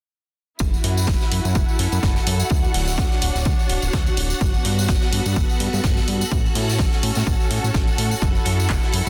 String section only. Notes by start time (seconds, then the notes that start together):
0.60 E4
1.41 A4
1.47 F#5
2.79 C#5
4.41 B3
5.01 A4
8.22 E4